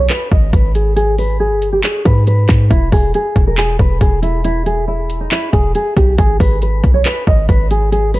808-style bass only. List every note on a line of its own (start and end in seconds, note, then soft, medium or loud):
0.32 0.52 G#1 loud
0.53 1.53 G#1 loud
1.51 1.82 G1 loud
2.05 2.47 G#2 loud
2.49 2.70 G#2 loud
2.71 2.91 E1 loud
2.92 3.13 E1 loud
3.36 3.78 E1 loud
3.79 4.00 E1 loud
4.01 5.27 E1 loud
5.53 5.74 E1 loud
5.97 6.17 B1 loud
6.18 6.39 G#1 loud
6.40 6.82 G#1 loud
6.84 7.05 B1 loud
7.27 7.48 G#1 loud
7.49 8.20 G#1 loud